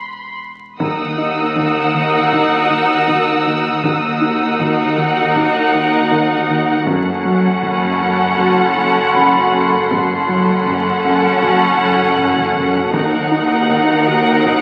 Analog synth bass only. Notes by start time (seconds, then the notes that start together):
0.80 D#3
1.18 D#4
1.57 D#3
1.95 D#3
2.34 D#4
2.70 D#3
3.09 D#3
3.47 D#3
3.84 D#3
4.21 D#4
4.60 D#3
4.98 D#3
5.37 D#4
5.75 D#3
6.12 D#3
6.50 D#3
6.88 F#2
7.25 F#3
7.63 F#2
8.02 F#2
8.40 F#3
8.77 F#2
9.17 F#2
9.53 F#2
9.91 F#2
10.29 F#3
10.67 F#2
11.04 F#2
11.42 F#3
11.78 F#2
12.18 F#2
12.56 F#2
12.94 D#3
13.31 D#4
13.70 D#3
14.08 D#3
14.47 D#4